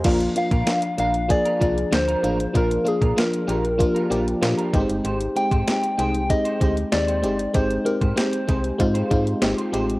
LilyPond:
<<
  \new Staff \with { instrumentName = "Soft synth lead" } { \time 4/4 \key bes \mixolydian \tempo 4 = 96 r8 f''4 f''8 d''8 d''8 c''4 | bes'8 aes'8 bes'2~ bes'8 r8 | r8 g''4 g''8 ees''8 ees''8 d''4 | c''8 bes'8 c''2~ c''8 r8 | }
  \new Staff \with { instrumentName = "Clean electric guitar" } { \time 4/4 \key bes \mixolydian <d' f' bes'>16 r8 <d' f' bes'>16 r8 <d' f' bes'>16 r8 <d' f' bes'>16 <d' f' bes'>16 r8 <d' f' bes'>16 <d' f' bes'>16 r16 | <d' f' bes'>16 r8 <d' f' bes'>16 r8 <d' f' bes'>16 r8 <d' f' bes'>16 <d' f' bes'>16 r8 <d' f' bes'>16 <ees' g' c''>16 r16 | <ees' g' c''>16 r8 <ees' g' c''>16 r8 <ees' g' c''>16 r8 <ees' g' c''>16 <ees' g' c''>16 r8 <ees' g' c''>16 <ees' g' c''>16 r16 | <ees' g' c''>16 r8 <ees' g' c''>16 r8 <ees' g' c''>16 r8 <ees' g' c''>16 <ees' g' c''>16 r8 <ees' g' c''>16 <ees' g' c''>16 r16 | }
  \new Staff \with { instrumentName = "FM electric piano" } { \time 4/4 \key bes \mixolydian << { <g' c''>16 r2. r8. | r1 | r1 | r1 | } \\ { <f bes d' f'>8 <f bes d' f'>8 <f bes d' f'>8 <f bes d' f'>8 <f bes d' aes'>8 <f bes d' f'>8 <f bes d' f'>8 <f bes d' f'>8 | <f bes d' f'>8 <f bes d' f'>8 <f bes d' f'>8 <f bes d' g'>8 <f bes d' f'>8 <f bes d' g'>8 <f bes d' f'>8 <aes ces' c' ees' g'>8~ | <aes ces' c' ees' g'>8 <aes c' ees' g'>8 <aes c' ees' g'>8 <aes c' ees' aes'>8 <aes c' ees' g'>8 <aes c' ees' g'>8 <aes c' ees' g'>8 <aes c' ees' g'>8 | <aes c' ees' g'>8 <aes c' ees' g'>8 <aes c' ees' g'>8 <aes c' ees' aes'>8 <aes c' ees' f'>8 <aes c' ees' f'>8 <aes c' ees' g'>8 <aes c' ees' g'>8 | } >> }
  \new Staff \with { instrumentName = "FM bass" } { \clef bass \time 4/4 \key bes \mixolydian bes,,8 r16 bes,16 r8 bes,,8. r16 c,8 d,8 a,,8 | bes,,8 r16 bes,16 r8 bes,,8. r16 bes,,8 bes,16 r16 aes,,16 g,,16 | aes,,8 r16 aes,16 r8 c,8. r16 d,8 ees,8 g,,8 | aes,,8 r16 aes,16 r8 c,8 aes,8 aes,8 aes,,16 r16 a,,8 | }
  \new DrumStaff \with { instrumentName = "Drums" } \drummode { \time 4/4 <cymc hh bd>16 hh16 hh16 <hh bd>16 <hh sn>16 hh16 hh16 hh16 <hh bd>16 hh16 <hh bd>16 hh16 <hh sn>16 hh16 hh16 hh16 | <hh bd>16 hh16 hh16 <hh bd>16 <hh sn>16 hh16 hh16 hh16 <hh bd>16 hh16 hh16 hh16 <hh sn>16 hh16 <hh bd>16 hh16 | hh16 hh16 hh16 <hh bd>16 <hh sn>16 hh16 hh16 hh16 <hh bd>16 hh16 <hh bd>16 hh16 <hh sn>16 hh16 hh16 hh16 | <hh bd>16 hh16 hh16 <hh bd>16 <hh sn>16 hh16 <hh bd>16 hh16 <hh bd>16 hh16 <hh bd>16 hh16 <hh sn>16 hh16 hh16 hh16 | }
>>